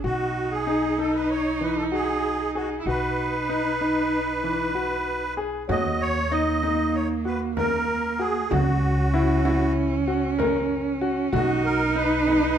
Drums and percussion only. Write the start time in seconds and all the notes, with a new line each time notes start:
5.69 frame drum
6.63 frame drum
7.57 frame drum
8.51 frame drum
9.45 frame drum
10.39 frame drum
11.34 frame drum
12.28 frame drum